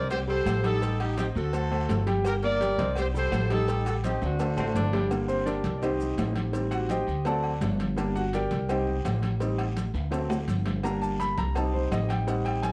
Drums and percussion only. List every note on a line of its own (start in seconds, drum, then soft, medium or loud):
0.09 cowbell loud
0.09 high conga soft
0.09 low conga medium
0.09 low agogo loud
0.09 long guiro medium
0.09 maracas medium
0.28 high conga soft
0.46 cowbell medium
0.46 high conga medium
0.46 low timbale medium
0.46 low agogo loud
0.46 short guiro medium
0.46 maracas medium
0.64 cowbell medium
0.64 high conga medium
0.64 low agogo medium
0.64 short guiro medium
0.64 maracas soft
0.82 cowbell loud
0.82 high conga soft
0.82 long guiro medium
0.82 maracas medium
1.00 cowbell medium
1.00 high conga soft
1.00 low agogo loud
1.17 cowbell medium
1.17 high conga loud
1.17 low timbale medium
1.17 short guiro medium
1.17 maracas medium
1.35 high conga soft
1.35 short guiro medium
1.35 maracas soft
1.53 cowbell loud
1.53 high conga soft
1.53 low agogo medium
1.53 long guiro medium
1.53 maracas medium
1.72 high conga soft
1.72 low agogo loud
1.88 cowbell medium
1.88 high conga medium
1.88 low timbale medium
1.88 short guiro medium
1.88 maracas medium
2.07 cowbell medium
2.07 high conga loud
2.07 short guiro medium
2.07 maracas soft
2.24 cowbell loud
2.24 high conga soft
2.24 low agogo loud
2.24 long guiro medium
2.24 maracas medium
2.43 high conga soft
2.43 low agogo medium
2.60 cowbell medium
2.60 high conga medium
2.60 low timbale medium
2.60 short guiro medium
2.60 maracas medium
2.78 cowbell medium
2.78 high conga loud
2.78 short guiro medium
2.78 maracas soft
2.96 cowbell loud
2.96 high conga soft
2.96 low conga medium
2.96 low agogo loud
2.96 long guiro medium
2.96 maracas medium
3.15 high conga soft
3.15 low conga medium
3.15 maracas medium
3.32 cowbell medium
3.32 high conga medium
3.32 low timbale loud
3.32 low agogo loud
3.32 short guiro medium
3.32 maracas medium
3.50 cowbell medium
3.50 high conga medium
3.50 low agogo medium
3.50 short guiro medium
3.50 maracas soft
3.67 cowbell loud
3.67 high conga soft
3.67 long guiro medium
3.67 maracas medium
3.86 cowbell medium
3.86 high conga soft
3.86 low agogo loud
3.86 maracas medium
4.03 cowbell medium
4.03 high conga loud
4.03 low timbale medium
4.03 short guiro medium
4.03 maracas medium
4.22 high conga soft
4.22 high timbale medium
4.22 short guiro medium
4.22 maracas soft
4.39 cowbell loud
4.39 high conga soft
4.39 high timbale medium
4.39 low agogo medium
4.39 long guiro medium
4.39 maracas medium
4.57 high conga soft
4.57 low timbale loud
4.57 low agogo loud
4.57 maracas medium
4.75 cowbell medium
4.75 high conga medium
4.75 low timbale medium
4.75 short guiro medium
4.75 maracas medium
4.93 cowbell medium
4.93 high conga loud
4.93 low timbale loud
4.93 short guiro medium
4.93 maracas soft
5.11 cowbell loud
5.11 high conga soft
5.11 low agogo loud
5.11 long guiro medium
5.11 maracas medium
5.29 high conga soft
5.29 low agogo medium
5.29 maracas medium
5.47 cowbell medium
5.47 high conga medium
5.47 low timbale medium
5.47 short guiro medium
5.47 maracas medium
5.64 cowbell medium
5.64 high conga loud
5.64 short guiro medium
5.64 maracas soft
5.82 cowbell loud
5.82 high conga soft
5.82 low conga medium
5.82 low agogo loud
5.82 long guiro medium
5.82 maracas medium
6.00 high conga soft
6.00 low conga medium
6.00 maracas medium
6.17 cowbell medium
6.17 high conga medium
6.17 low timbale medium
6.17 low agogo loud
6.17 short guiro medium
6.17 maracas medium
6.36 cowbell medium
6.36 high conga medium
6.36 low agogo medium
6.36 short guiro medium
6.36 maracas soft
6.53 cowbell loud
6.53 high conga soft
6.53 long guiro medium
6.53 maracas medium
6.72 cowbell medium
6.72 high conga soft
6.72 low agogo loud
6.72 maracas medium
6.89 cowbell medium
6.89 high conga loud
6.89 low timbale medium
6.89 short guiro medium
6.89 maracas medium
7.07 high conga soft
7.07 short guiro medium
7.07 maracas soft
7.25 cowbell loud
7.25 high conga soft
7.25 low agogo medium
7.25 long guiro medium
7.25 maracas medium
7.43 high conga soft
7.43 low agogo loud
7.61 cowbell medium
7.61 high conga medium
7.61 low timbale medium
7.61 short guiro medium
7.61 maracas medium
7.79 cowbell medium
7.79 high conga medium
7.79 short guiro medium
7.79 maracas soft
7.96 cowbell loud
7.96 high conga soft
7.96 low agogo loud
7.96 long guiro medium
7.96 maracas medium
8.15 high conga soft
8.15 low agogo medium
8.15 maracas medium
8.33 cowbell medium
8.33 high conga medium
8.33 low timbale medium
8.33 short guiro medium
8.33 maracas medium
8.51 cowbell medium
8.51 high conga loud
8.51 short guiro medium
8.51 maracas soft
8.69 cowbell loud
8.69 high conga soft
8.69 low conga medium
8.69 low agogo loud
8.69 long guiro medium
8.69 maracas medium
8.87 high conga soft
8.87 low conga medium
9.05 cowbell medium
9.05 high conga loud
9.05 low timbale medium
9.05 low agogo loud
9.05 short guiro medium
9.05 maracas medium
9.22 cowbell medium
9.22 high conga medium
9.22 low agogo medium
9.22 short guiro medium
9.22 maracas soft
9.40 cowbell loud
9.40 high conga soft
9.40 long guiro medium
9.40 maracas medium
9.59 cowbell medium
9.59 high conga soft
9.59 low agogo loud
9.76 cowbell medium
9.76 high conga loud
9.76 low timbale medium
9.76 short guiro medium
9.76 maracas medium
9.94 high conga soft
9.94 high timbale medium
9.94 short guiro medium
9.94 maracas soft
10.12 cowbell loud
10.12 high conga soft
10.12 high timbale medium
10.12 low agogo medium
10.12 long guiro medium
10.12 maracas medium
10.30 high conga soft
10.30 low timbale loud
10.30 low agogo loud
10.30 maracas medium
10.48 cowbell medium
10.48 high conga loud
10.48 short guiro medium
10.48 maracas medium
10.66 cowbell medium
10.66 high conga medium
10.66 low timbale medium
10.66 short guiro medium
10.66 maracas soft
10.83 cowbell loud
10.83 high conga soft
10.83 low agogo loud
10.83 long guiro medium
10.83 maracas medium
11.01 high conga soft
11.01 low agogo medium
11.01 maracas medium
11.19 cowbell medium
11.19 high conga medium
11.19 low timbale medium
11.19 short guiro medium
11.19 maracas medium
11.37 cowbell medium
11.37 high conga loud
11.37 short guiro medium
11.37 maracas soft
11.55 cowbell loud
11.55 high conga soft
11.55 low conga medium
11.55 low agogo loud
11.55 long guiro medium
11.55 maracas medium
11.74 high conga soft
11.74 low conga medium
11.91 cowbell medium
11.91 high conga medium
11.91 low timbale medium
11.91 low agogo loud
11.91 short guiro medium
11.91 maracas medium
12.09 cowbell medium
12.09 high conga medium
12.09 low agogo medium
12.09 short guiro medium
12.09 maracas soft
12.27 cowbell loud
12.27 long guiro medium
12.27 maracas medium
12.45 cowbell medium
12.45 high conga soft
12.45 low agogo loud
12.63 cowbell medium
12.63 high conga loud
12.63 low timbale medium
12.63 short guiro medium
12.63 maracas medium